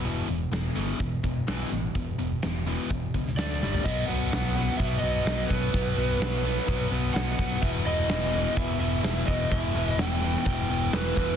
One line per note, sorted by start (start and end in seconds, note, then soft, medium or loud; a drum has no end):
0.04 0.21 E1 medium
0.04 0.27 E2 medium
0.04 0.27 B2 loud
0.04 0.27 E3 loud
0.04 closed hi-hat medium
0.28 0.44 E1 medium
0.28 0.49 E2 medium
0.28 0.50 B2 medium
0.28 closed hi-hat medium
0.52 0.68 E1 medium
0.52 0.73 E2 medium
0.52 0.73 B2 medium
0.52 snare loud
0.52 closed hi-hat medium
0.75 0.92 G1 medium
0.75 0.98 E2 medium
0.75 0.98 B2 medium
0.75 0.99 E3 medium
0.75 closed hi-hat medium
0.99 1.16 E1 medium
0.99 1.21 E2 medium
0.99 1.21 B2 medium
0.99 kick loud
0.99 closed hi-hat medium
1.23 1.40 E1 medium
1.23 1.45 E2 medium
1.23 1.45 B2 medium
1.23 kick medium
1.23 closed hi-hat medium
1.47 1.64 B1 medium
1.47 1.69 E2 medium
1.47 1.70 B2 medium
1.47 1.70 E3 loud
1.47 snare loud
1.47 closed hi-hat medium
1.71 1.87 A1 medium
1.71 1.92 E2 medium
1.71 1.92 B2 medium
1.71 closed hi-hat medium
1.95 2.11 E1 medium
1.95 2.16 E2 medium
1.95 2.16 B2 medium
1.95 kick loud
1.95 closed hi-hat medium
2.18 2.35 E1 medium
2.18 2.40 E2 medium
2.18 2.40 B2 medium
2.18 closed hi-hat medium
2.43 2.75 E1 medium
2.43 2.64 E2 medium
2.43 2.64 B2 medium
2.43 snare loud
2.43 closed hi-hat medium
2.66 2.88 E2 medium
2.66 2.89 B2 loud
2.66 2.89 E3 loud
2.66 closed hi-hat medium
2.90 3.06 E1 medium
2.90 3.11 E2 medium
2.90 3.12 B2 medium
2.90 kick loud
2.90 closed hi-hat medium
3.14 3.38 C#2 medium
3.14 3.35 E2 medium
3.14 3.35 B2 medium
3.14 kick medium
3.14 closed hi-hat medium
3.27 snare soft
3.37 3.63 D2 medium
3.37 3.60 D3 medium
3.37 3.60 A3 loud
3.37 3.61 D4 medium
3.37 3.81 D5 medium
3.37 snare loud
3.37 closed hi-hat medium
3.51 snare soft
3.62 3.77 G1 medium
3.62 3.83 G2 medium
3.62 3.84 D3 medium
3.62 3.84 G3 loud
3.62 snare medium
3.74 floor tom medium
3.84 4.04 B1 loud
3.84 4.08 B2 loud
3.84 4.09 F#3 medium
3.84 4.10 B3 loud
3.84 4.06 D#5 loud
3.84 kick loud
3.84 crash loud
4.06 4.27 B1 medium
4.06 4.32 B2 medium
4.06 4.32 F#3 loud
4.06 4.33 B3 medium
4.06 4.80 F#5 loud
4.06 open hi-hat medium
4.32 4.69 B1 medium
4.32 4.55 B2 medium
4.32 4.56 F#3 loud
4.32 4.57 B3 medium
4.32 snare loud
4.32 open hi-hat medium
4.56 4.78 B2 loud
4.56 4.79 F#3 loud
4.56 4.80 B3 loud
4.56 open hi-hat medium
4.77 4.98 B1 medium
4.77 5.02 B2 medium
4.77 5.02 F#3 medium
4.77 5.04 B3 medium
4.77 4.98 E5 loud
4.77 kick loud
4.77 open hi-hat medium
4.99 5.20 B1 medium
4.99 5.49 D#5 loud
5.03 5.25 B2 loud
5.03 5.26 F#3 loud
5.03 5.27 B3 loud
5.03 open hi-hat medium
5.25 5.44 B1 medium
5.25 5.49 B2 medium
5.25 5.49 F#3 medium
5.25 5.51 B3 medium
5.25 snare loud
5.46 5.72 B2 medium
5.46 6.86 B4 medium
5.50 5.69 B1 medium
5.50 5.73 F#3 medium
5.50 5.75 B3 loud
5.50 kick medium
5.50 open hi-hat medium
5.74 5.92 B1 loud
5.74 5.96 B2 loud
5.74 5.97 F#3 loud
5.74 5.98 B3 loud
5.74 kick loud
5.74 open hi-hat medium
5.96 6.15 B1 medium
5.96 6.19 B2 medium
5.96 6.20 F#3 medium
5.96 6.22 B3 loud
5.96 open hi-hat medium
6.20 6.57 B1 medium
6.20 6.43 B2 medium
6.20 6.44 F#3 medium
6.20 6.45 B3 medium
6.20 snare loud
6.44 6.66 B2 loud
6.44 6.67 F#3 loud
6.44 6.68 B3 loud
6.44 open hi-hat medium
6.58 snare soft
6.67 6.86 B1 medium
6.67 6.90 B2 medium
6.67 6.91 F#3 medium
6.67 6.92 B3 loud
6.67 kick loud
6.67 open hi-hat medium
6.91 7.09 B1 medium
6.91 7.14 B2 loud
6.91 7.15 F#3 loud
6.91 7.17 B3 loud
6.91 open hi-hat medium
7.14 7.33 B1 medium
7.14 7.38 B2 medium
7.14 7.39 F#3 medium
7.14 7.40 B3 loud
7.14 7.63 F#5 loud
7.14 snare loud
7.14 open hi-hat medium
7.39 7.57 B1 medium
7.39 7.61 B2 medium
7.39 7.61 F#3 medium
7.39 10.91 B3 loud
7.39 kick medium
7.39 open hi-hat medium
7.62 7.81 E1 medium
7.62 7.85 E2 loud
7.62 7.86 B2 loud
7.62 7.87 E3 loud
7.62 7.68 E5 loud
7.62 kick loud
7.62 crash loud
7.85 8.04 E1 medium
7.85 8.09 E2 medium
7.85 8.09 B2 loud
7.85 8.10 E3 loud
7.85 8.53 D#5 loud
7.85 open hi-hat medium
8.09 8.46 E1 medium
8.09 8.32 E2 medium
8.09 8.32 B2 loud
8.09 8.34 E3 loud
8.09 snare loud
8.09 open hi-hat medium
8.33 8.55 E2 loud
8.33 8.56 B2 loud
8.33 8.56 E3 loud
8.33 open hi-hat medium
8.56 8.75 E1 medium
8.56 8.78 E2 medium
8.56 8.79 B2 medium
8.56 8.80 E3 medium
8.56 8.78 E5 loud
8.56 kick loud
8.56 open hi-hat medium
8.79 8.99 E1 medium
8.79 9.03 E2 loud
8.79 9.03 B2 loud
8.79 9.04 E3 loud
8.79 9.24 E5 loud
8.79 open hi-hat medium
9.03 9.22 E1 medium
9.03 9.26 E2 medium
9.03 9.27 B2 medium
9.03 9.28 E3 loud
9.03 snare loud
9.03 open hi-hat medium
9.27 9.46 E1 medium
9.27 9.50 E2 medium
9.27 9.51 B2 medium
9.27 9.52 E3 loud
9.27 9.51 D#5 loud
9.27 kick medium
9.27 open hi-hat medium
9.51 9.70 E1 loud
9.51 9.74 E2 loud
9.51 9.75 B2 loud
9.51 9.75 E3 loud
9.51 9.88 E5 loud
9.51 kick loud
9.51 open hi-hat medium
9.74 9.93 E1 loud
9.74 9.97 E2 medium
9.74 9.98 B2 loud
9.74 9.99 E3 loud
9.74 open hi-hat medium
9.88 10.00 D#5 loud
9.97 10.35 E1 medium
9.97 10.21 E2 loud
9.97 10.22 B2 medium
9.97 10.23 E3 loud
9.97 10.43 G5 loud
9.97 snare loud
9.97 open hi-hat medium
10.22 10.45 E2 medium
10.22 10.46 B2 loud
10.22 10.46 E3 loud
10.22 open hi-hat medium
10.35 snare soft
10.46 10.64 E1 loud
10.46 10.69 E2 medium
10.46 10.69 B2 medium
10.46 10.70 E3 medium
10.46 10.91 G5 loud
10.46 kick loud
10.46 open hi-hat medium
10.70 10.88 E1 medium
10.70 10.92 E2 loud
10.70 10.93 B2 medium
10.70 10.94 E3 loud
10.70 open hi-hat medium
10.93 11.12 E1 medium
10.93 11.16 E2 medium
10.93 11.17 B2 medium
10.93 11.18 E3 loud
10.93 11.36 B4 medium
10.93 snare loud
10.93 open hi-hat medium
11.17 11.36 E1 medium
11.17 11.36 E2 medium
11.17 11.36 B2 medium
11.17 11.36 E3 medium
11.17 kick medium
11.17 open hi-hat medium